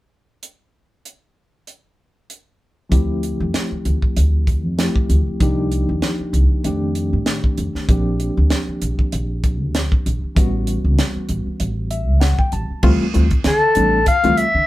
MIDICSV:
0, 0, Header, 1, 6, 480
1, 0, Start_track
1, 0, Key_signature, -1, "minor"
1, 0, Tempo, 620476
1, 333, Time_signature, 4, 2, 24, 8
1, 11347, End_track
2, 0, Start_track
2, 0, Title_t, "Soprano saxophone"
2, 0, Program_c, 0, 64
2, 10420, Note_on_c, 0, 69, 78
2, 10863, Note_off_c, 0, 69, 0
2, 10889, Note_on_c, 0, 77, 84
2, 11122, Note_on_c, 0, 76, 94
2, 11134, Note_off_c, 0, 77, 0
2, 11347, Note_off_c, 0, 76, 0
2, 11347, End_track
3, 0, Start_track
3, 0, Title_t, "Reed electric piano"
3, 0, Program_c, 1, 4
3, 2239, Note_on_c, 1, 53, 57
3, 2246, Note_on_c, 1, 57, 45
3, 2252, Note_on_c, 1, 60, 51
3, 2258, Note_on_c, 1, 64, 52
3, 2258, Note_on_c, 1, 67, 63
3, 3660, Note_off_c, 1, 53, 0
3, 3663, Note_off_c, 1, 57, 0
3, 3666, Note_off_c, 1, 60, 0
3, 3669, Note_off_c, 1, 64, 0
3, 3669, Note_off_c, 1, 67, 0
3, 3691, Note_on_c, 1, 53, 43
3, 3696, Note_on_c, 1, 57, 39
3, 3696, Note_on_c, 1, 60, 35
3, 3698, Note_on_c, 1, 67, 48
3, 3699, Note_on_c, 1, 64, 37
3, 4167, Note_off_c, 1, 53, 0
3, 4176, Note_on_c, 1, 53, 57
3, 4177, Note_off_c, 1, 57, 0
3, 4177, Note_off_c, 1, 60, 0
3, 4178, Note_off_c, 1, 64, 0
3, 4178, Note_off_c, 1, 67, 0
3, 4179, Note_on_c, 1, 58, 53
3, 4184, Note_on_c, 1, 62, 55
3, 4190, Note_on_c, 1, 63, 48
3, 4195, Note_on_c, 1, 67, 66
3, 5118, Note_off_c, 1, 53, 0
3, 5119, Note_off_c, 1, 58, 0
3, 5122, Note_off_c, 1, 62, 0
3, 5125, Note_off_c, 1, 63, 0
3, 5127, Note_off_c, 1, 67, 0
3, 5132, Note_on_c, 1, 51, 53
3, 5136, Note_on_c, 1, 57, 47
3, 5140, Note_on_c, 1, 60, 47
3, 5143, Note_on_c, 1, 62, 51
3, 5152, Note_on_c, 1, 67, 55
3, 6076, Note_off_c, 1, 51, 0
3, 6077, Note_off_c, 1, 57, 0
3, 6079, Note_off_c, 1, 60, 0
3, 6081, Note_off_c, 1, 62, 0
3, 6086, Note_off_c, 1, 67, 0
3, 6097, Note_on_c, 1, 53, 56
3, 6100, Note_on_c, 1, 58, 51
3, 6107, Note_on_c, 1, 60, 52
3, 6110, Note_on_c, 1, 62, 52
3, 6115, Note_on_c, 1, 67, 63
3, 7985, Note_off_c, 1, 53, 0
3, 7986, Note_off_c, 1, 58, 0
3, 7990, Note_off_c, 1, 60, 0
3, 7991, Note_off_c, 1, 62, 0
3, 7994, Note_off_c, 1, 67, 0
3, 8008, Note_on_c, 1, 52, 60
3, 8014, Note_on_c, 1, 55, 54
3, 8016, Note_on_c, 1, 59, 57
3, 8023, Note_on_c, 1, 61, 50
3, 8026, Note_on_c, 1, 66, 66
3, 9212, Note_on_c, 1, 76, 55
3, 9436, Note_off_c, 1, 76, 0
3, 9442, Note_on_c, 1, 78, 59
3, 9571, Note_off_c, 1, 78, 0
3, 9585, Note_on_c, 1, 79, 54
3, 9685, Note_off_c, 1, 79, 0
3, 9691, Note_on_c, 1, 81, 56
3, 9897, Note_off_c, 1, 52, 0
3, 9900, Note_off_c, 1, 55, 0
3, 9901, Note_off_c, 1, 59, 0
3, 9905, Note_off_c, 1, 61, 0
3, 9906, Note_off_c, 1, 66, 0
3, 9915, Note_off_c, 1, 81, 0
3, 9924, Note_on_c, 1, 52, 92
3, 9926, Note_on_c, 1, 55, 85
3, 9929, Note_on_c, 1, 57, 89
3, 9931, Note_on_c, 1, 60, 83
3, 9931, Note_on_c, 1, 65, 111
3, 10093, Note_off_c, 1, 52, 0
3, 10094, Note_off_c, 1, 55, 0
3, 10095, Note_off_c, 1, 57, 0
3, 10096, Note_off_c, 1, 60, 0
3, 10096, Note_off_c, 1, 65, 0
3, 10162, Note_on_c, 1, 52, 78
3, 10166, Note_on_c, 1, 55, 68
3, 10166, Note_on_c, 1, 57, 71
3, 10170, Note_on_c, 1, 60, 73
3, 10174, Note_on_c, 1, 65, 78
3, 10253, Note_off_c, 1, 52, 0
3, 10255, Note_off_c, 1, 55, 0
3, 10255, Note_off_c, 1, 57, 0
3, 10257, Note_off_c, 1, 60, 0
3, 10259, Note_off_c, 1, 65, 0
3, 10637, Note_on_c, 1, 52, 65
3, 10642, Note_on_c, 1, 55, 63
3, 10645, Note_on_c, 1, 57, 57
3, 10647, Note_on_c, 1, 62, 70
3, 10649, Note_on_c, 1, 60, 61
3, 10808, Note_off_c, 1, 52, 0
3, 10810, Note_off_c, 1, 55, 0
3, 10812, Note_off_c, 1, 57, 0
3, 10813, Note_off_c, 1, 62, 0
3, 10814, Note_off_c, 1, 60, 0
3, 10889, Note_on_c, 1, 60, 20
3, 10898, Note_on_c, 1, 65, 26
3, 10953, Note_off_c, 1, 60, 0
3, 10957, Note_off_c, 1, 65, 0
3, 11013, Note_on_c, 1, 52, 86
3, 11017, Note_on_c, 1, 55, 71
3, 11019, Note_on_c, 1, 57, 81
3, 11020, Note_on_c, 1, 60, 77
3, 11023, Note_on_c, 1, 65, 92
3, 11163, Note_off_c, 1, 52, 0
3, 11165, Note_off_c, 1, 55, 0
3, 11166, Note_off_c, 1, 57, 0
3, 11167, Note_off_c, 1, 60, 0
3, 11168, Note_off_c, 1, 65, 0
3, 11262, Note_on_c, 1, 60, 21
3, 11270, Note_on_c, 1, 62, 24
3, 11313, Note_off_c, 1, 60, 0
3, 11317, Note_off_c, 1, 62, 0
3, 11347, End_track
4, 0, Start_track
4, 0, Title_t, "Upright bass"
4, 0, Program_c, 2, 32
4, 2258, Note_on_c, 2, 38, 73
4, 2569, Note_off_c, 2, 38, 0
4, 2632, Note_on_c, 2, 41, 70
4, 2720, Note_off_c, 2, 41, 0
4, 2982, Note_on_c, 2, 38, 67
4, 3091, Note_off_c, 2, 38, 0
4, 3222, Note_on_c, 2, 38, 69
4, 3596, Note_off_c, 2, 38, 0
4, 3596, Note_on_c, 2, 41, 56
4, 3794, Note_off_c, 2, 41, 0
4, 3940, Note_on_c, 2, 38, 70
4, 4051, Note_off_c, 2, 38, 0
4, 4182, Note_on_c, 2, 36, 73
4, 4492, Note_off_c, 2, 36, 0
4, 4555, Note_on_c, 2, 39, 67
4, 4642, Note_off_c, 2, 39, 0
4, 4897, Note_on_c, 2, 36, 73
4, 5009, Note_off_c, 2, 36, 0
4, 5144, Note_on_c, 2, 41, 69
4, 5515, Note_on_c, 2, 45, 64
4, 5527, Note_off_c, 2, 41, 0
4, 5714, Note_off_c, 2, 45, 0
4, 5863, Note_on_c, 2, 41, 65
4, 5972, Note_off_c, 2, 41, 0
4, 6100, Note_on_c, 2, 34, 79
4, 6411, Note_off_c, 2, 34, 0
4, 6477, Note_on_c, 2, 38, 72
4, 6564, Note_off_c, 2, 38, 0
4, 6822, Note_on_c, 2, 34, 69
4, 6931, Note_off_c, 2, 34, 0
4, 7061, Note_on_c, 2, 34, 78
4, 7437, Note_off_c, 2, 34, 0
4, 7437, Note_on_c, 2, 38, 60
4, 7635, Note_off_c, 2, 38, 0
4, 7783, Note_on_c, 2, 34, 66
4, 7891, Note_off_c, 2, 34, 0
4, 8020, Note_on_c, 2, 33, 72
4, 8330, Note_off_c, 2, 33, 0
4, 8389, Note_on_c, 2, 37, 69
4, 8478, Note_off_c, 2, 37, 0
4, 8735, Note_on_c, 2, 33, 65
4, 8846, Note_off_c, 2, 33, 0
4, 8975, Note_on_c, 2, 33, 68
4, 9349, Note_off_c, 2, 33, 0
4, 9349, Note_on_c, 2, 37, 56
4, 9548, Note_off_c, 2, 37, 0
4, 9689, Note_on_c, 2, 33, 67
4, 9802, Note_off_c, 2, 33, 0
4, 9928, Note_on_c, 2, 38, 86
4, 10041, Note_off_c, 2, 38, 0
4, 10173, Note_on_c, 2, 38, 72
4, 10283, Note_off_c, 2, 38, 0
4, 10407, Note_on_c, 2, 50, 82
4, 10520, Note_off_c, 2, 50, 0
4, 10647, Note_on_c, 2, 33, 69
4, 10848, Note_off_c, 2, 33, 0
4, 11017, Note_on_c, 2, 38, 79
4, 11108, Note_off_c, 2, 38, 0
4, 11252, Note_on_c, 2, 50, 62
4, 11345, Note_off_c, 2, 50, 0
4, 11347, End_track
5, 0, Start_track
5, 0, Title_t, "Muted upright bass strokes"
5, 2875, Note_on_c, 9, 29, 31
5, 2952, Note_off_c, 9, 29, 0
5, 3114, Note_on_c, 9, 29, 26
5, 3192, Note_off_c, 9, 29, 0
5, 3833, Note_on_c, 9, 29, 29
5, 3910, Note_off_c, 9, 29, 0
5, 4075, Note_on_c, 9, 29, 30
5, 4152, Note_off_c, 9, 29, 0
5, 4793, Note_on_c, 9, 29, 28
5, 4871, Note_off_c, 9, 29, 0
5, 5040, Note_on_c, 9, 29, 28
5, 5117, Note_off_c, 9, 29, 0
5, 5753, Note_on_c, 9, 29, 28
5, 5830, Note_off_c, 9, 29, 0
5, 5997, Note_on_c, 9, 29, 30
5, 6074, Note_off_c, 9, 29, 0
5, 6716, Note_on_c, 9, 29, 29
5, 6794, Note_off_c, 9, 29, 0
5, 6952, Note_on_c, 9, 29, 28
5, 7029, Note_off_c, 9, 29, 0
5, 7674, Note_on_c, 9, 29, 32
5, 7751, Note_off_c, 9, 29, 0
5, 7917, Note_on_c, 9, 29, 30
5, 7994, Note_off_c, 9, 29, 0
5, 8630, Note_on_c, 9, 29, 29
5, 8707, Note_off_c, 9, 29, 0
5, 8865, Note_on_c, 9, 29, 28
5, 8943, Note_off_c, 9, 29, 0
5, 9583, Note_on_c, 9, 29, 29
5, 9660, Note_off_c, 9, 29, 0
5, 9826, Note_on_c, 9, 29, 28
5, 9903, Note_off_c, 9, 29, 0
5, 10064, Note_on_c, 9, 29, 34
5, 10142, Note_off_c, 9, 29, 0
5, 10880, Note_on_c, 9, 29, 31
5, 10957, Note_off_c, 9, 29, 0
5, 11347, End_track
6, 0, Start_track
6, 0, Title_t, "Drums"
6, 331, Note_on_c, 9, 42, 49
6, 408, Note_off_c, 9, 42, 0
6, 815, Note_on_c, 9, 42, 41
6, 893, Note_off_c, 9, 42, 0
6, 1294, Note_on_c, 9, 42, 43
6, 1372, Note_off_c, 9, 42, 0
6, 1779, Note_on_c, 9, 42, 45
6, 1856, Note_off_c, 9, 42, 0
6, 2257, Note_on_c, 9, 36, 86
6, 2257, Note_on_c, 9, 42, 65
6, 2334, Note_off_c, 9, 36, 0
6, 2334, Note_off_c, 9, 42, 0
6, 2500, Note_on_c, 9, 42, 44
6, 2577, Note_off_c, 9, 42, 0
6, 2739, Note_on_c, 9, 42, 61
6, 2740, Note_on_c, 9, 38, 78
6, 2817, Note_off_c, 9, 42, 0
6, 2818, Note_off_c, 9, 38, 0
6, 2981, Note_on_c, 9, 42, 50
6, 3058, Note_off_c, 9, 42, 0
6, 3113, Note_on_c, 9, 36, 57
6, 3190, Note_off_c, 9, 36, 0
6, 3222, Note_on_c, 9, 42, 66
6, 3300, Note_off_c, 9, 42, 0
6, 3460, Note_on_c, 9, 36, 61
6, 3461, Note_on_c, 9, 42, 43
6, 3537, Note_off_c, 9, 36, 0
6, 3539, Note_off_c, 9, 42, 0
6, 3703, Note_on_c, 9, 38, 81
6, 3703, Note_on_c, 9, 42, 70
6, 3780, Note_off_c, 9, 42, 0
6, 3781, Note_off_c, 9, 38, 0
6, 3834, Note_on_c, 9, 36, 58
6, 3911, Note_off_c, 9, 36, 0
6, 3942, Note_on_c, 9, 42, 50
6, 4020, Note_off_c, 9, 42, 0
6, 4181, Note_on_c, 9, 36, 91
6, 4181, Note_on_c, 9, 42, 69
6, 4259, Note_off_c, 9, 36, 0
6, 4259, Note_off_c, 9, 42, 0
6, 4422, Note_on_c, 9, 42, 48
6, 4499, Note_off_c, 9, 42, 0
6, 4659, Note_on_c, 9, 42, 60
6, 4660, Note_on_c, 9, 38, 76
6, 4737, Note_off_c, 9, 38, 0
6, 4737, Note_off_c, 9, 42, 0
6, 4902, Note_on_c, 9, 42, 49
6, 4980, Note_off_c, 9, 42, 0
6, 5140, Note_on_c, 9, 42, 60
6, 5217, Note_off_c, 9, 42, 0
6, 5378, Note_on_c, 9, 42, 44
6, 5455, Note_off_c, 9, 42, 0
6, 5617, Note_on_c, 9, 38, 88
6, 5617, Note_on_c, 9, 42, 62
6, 5694, Note_off_c, 9, 42, 0
6, 5695, Note_off_c, 9, 38, 0
6, 5754, Note_on_c, 9, 36, 61
6, 5832, Note_off_c, 9, 36, 0
6, 5860, Note_on_c, 9, 42, 45
6, 5938, Note_off_c, 9, 42, 0
6, 5998, Note_on_c, 9, 38, 28
6, 6075, Note_off_c, 9, 38, 0
6, 6101, Note_on_c, 9, 36, 93
6, 6102, Note_on_c, 9, 42, 67
6, 6178, Note_off_c, 9, 36, 0
6, 6179, Note_off_c, 9, 42, 0
6, 6342, Note_on_c, 9, 42, 44
6, 6419, Note_off_c, 9, 42, 0
6, 6579, Note_on_c, 9, 38, 86
6, 6579, Note_on_c, 9, 42, 59
6, 6656, Note_off_c, 9, 42, 0
6, 6657, Note_off_c, 9, 38, 0
6, 6820, Note_on_c, 9, 42, 56
6, 6897, Note_off_c, 9, 42, 0
6, 6953, Note_on_c, 9, 36, 57
6, 7031, Note_off_c, 9, 36, 0
6, 7058, Note_on_c, 9, 42, 62
6, 7136, Note_off_c, 9, 42, 0
6, 7300, Note_on_c, 9, 42, 46
6, 7301, Note_on_c, 9, 36, 62
6, 7377, Note_off_c, 9, 42, 0
6, 7378, Note_off_c, 9, 36, 0
6, 7540, Note_on_c, 9, 42, 68
6, 7541, Note_on_c, 9, 38, 90
6, 7617, Note_off_c, 9, 42, 0
6, 7618, Note_off_c, 9, 38, 0
6, 7673, Note_on_c, 9, 36, 66
6, 7750, Note_off_c, 9, 36, 0
6, 7784, Note_on_c, 9, 42, 53
6, 7861, Note_off_c, 9, 42, 0
6, 8018, Note_on_c, 9, 36, 96
6, 8021, Note_on_c, 9, 42, 73
6, 8096, Note_off_c, 9, 36, 0
6, 8098, Note_off_c, 9, 42, 0
6, 8256, Note_on_c, 9, 42, 45
6, 8333, Note_off_c, 9, 42, 0
6, 8498, Note_on_c, 9, 42, 63
6, 8499, Note_on_c, 9, 38, 87
6, 8576, Note_off_c, 9, 38, 0
6, 8576, Note_off_c, 9, 42, 0
6, 8731, Note_on_c, 9, 42, 47
6, 8809, Note_off_c, 9, 42, 0
6, 8972, Note_on_c, 9, 42, 67
6, 9050, Note_off_c, 9, 42, 0
6, 9210, Note_on_c, 9, 42, 47
6, 9288, Note_off_c, 9, 42, 0
6, 9449, Note_on_c, 9, 38, 86
6, 9449, Note_on_c, 9, 42, 65
6, 9526, Note_off_c, 9, 42, 0
6, 9527, Note_off_c, 9, 38, 0
6, 9582, Note_on_c, 9, 36, 62
6, 9659, Note_off_c, 9, 36, 0
6, 9685, Note_on_c, 9, 42, 48
6, 9763, Note_off_c, 9, 42, 0
6, 9923, Note_on_c, 9, 49, 94
6, 9927, Note_on_c, 9, 36, 99
6, 10000, Note_off_c, 9, 49, 0
6, 10004, Note_off_c, 9, 36, 0
6, 10168, Note_on_c, 9, 42, 52
6, 10245, Note_off_c, 9, 42, 0
6, 10293, Note_on_c, 9, 42, 34
6, 10299, Note_on_c, 9, 36, 66
6, 10370, Note_off_c, 9, 42, 0
6, 10376, Note_off_c, 9, 36, 0
6, 10399, Note_on_c, 9, 42, 67
6, 10400, Note_on_c, 9, 38, 90
6, 10476, Note_off_c, 9, 42, 0
6, 10477, Note_off_c, 9, 38, 0
6, 10637, Note_on_c, 9, 42, 60
6, 10714, Note_off_c, 9, 42, 0
6, 10879, Note_on_c, 9, 42, 78
6, 10883, Note_on_c, 9, 36, 64
6, 10956, Note_off_c, 9, 42, 0
6, 10960, Note_off_c, 9, 36, 0
6, 11014, Note_on_c, 9, 42, 35
6, 11091, Note_off_c, 9, 42, 0
6, 11120, Note_on_c, 9, 42, 56
6, 11197, Note_off_c, 9, 42, 0
6, 11347, End_track
0, 0, End_of_file